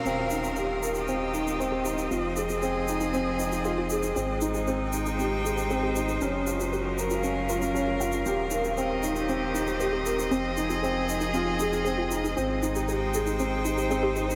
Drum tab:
SH |x-xxx-xxx-xxx-xx|x-xxx-xxx-xxx-xx|x-xxx-xxx-xxx-xx|x-xxx-xxx-xxx-xx|

SH |x-xxx-xxx-xxx-xx|x-xxx-xxx-xxx-xx|x-xxx-xxx-xxx-xx|